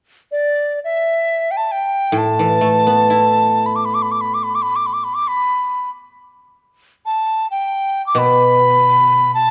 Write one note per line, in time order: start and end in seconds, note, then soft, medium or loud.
0.32 0.80 D5 medium
0.84 1.53 E5 medium
1.51 1.58 G5 medium
1.57 1.73 A5 medium
1.72 2.19 G5 medium
2.12 5.05 A2 soft
2.18 3.68 A5 medium
2.39 4.33 E3 soft
2.61 4.56 A3 soft
2.87 4.81 B3 soft
3.10 5.05 E4 soft
3.66 3.77 B5 medium
3.76 3.87 D6 medium
3.85 3.96 B5 medium
3.94 4.04 D6 medium
4.02 4.13 B5 medium
4.12 4.22 D6 medium
4.21 4.36 B5 medium
4.34 4.45 D6 medium
4.43 4.57 B5 medium
4.55 4.64 D6 medium
4.62 4.77 B5 medium
4.76 4.88 D6 medium
4.86 4.95 B5 medium
4.93 5.05 D6 medium
5.04 5.16 B5 medium
5.15 5.29 D6 medium
5.28 5.90 B5 medium
7.06 7.47 A5 medium
7.51 8.05 G5 medium
8.07 8.20 D6 medium
8.15 9.51 B2 soft
8.15 9.34 B5 medium
9.35 9.51 A5 medium